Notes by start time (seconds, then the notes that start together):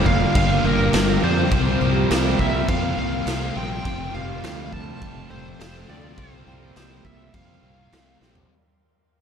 Already playing: F1 G2 D3 F3 G3 D4 F4 A#4 F5 G5 D6
0.05 D3 G3 A#3 F5, kick
0.35 G1 G2 D3 G3 F4 F5, kick, crash
0.64 G1 D3 G3 A#3 A#4
0.93 G1 G2 D3 F3 G3, snare, crash
1.23 F2 G2 D3 G3 D4 C5
1.51 C2 C3 F3 G3 A#3 C4 F4 A#4 C6, kick, crash
1.81 C2 G3 C4 G4
2.10 C2 C3 G3 C4, snare, crash
2.39 C2 G3 A#3 C4 E5, kick
2.68 F2 C3 G3 C4 G4 F5, kick, crash
2.97 C2 G3 A#3 C4 F5
3.26 C2 C3 F3 G3 C4, snare, crash
3.56 A#1 C3 G3 C4 G5
3.85 F1 F2 C3 F3 G3 A3 F4 A4 C5 F5 C6, kick, crash
4.14 F1 C3 F3 G4 F5
4.43 D2 F2 C3 F3 C4, snare, crash
4.72 C3 F3 A3 A5, kick
5.02 F1 F2 C3 F3 G4, kick, crash
5.30 F1 C3 F3 A3 C5
5.60 F1 F2 C3 F3 C5, snare, crash
5.89 D2 F2 C3 F3 C4 D5
6.17 C2 C3 F3 G3 A#3 C4 F4 A#4 C5, kick, crash
6.47 C2 G3 C4 G4
6.76 C2 C3 G3 C4 C5, snare, crash
7.04 C2 G3 A#3 C4 E5, kick
7.34 F2 C3 G3 C4 G4 F5, kick, crash
7.63 C2 G3 A#3 C4
7.92 C2 C3 F3 G3 C4, snare, crash
8.21 A#1 C3 G3 C4, snare
8.35 floor tom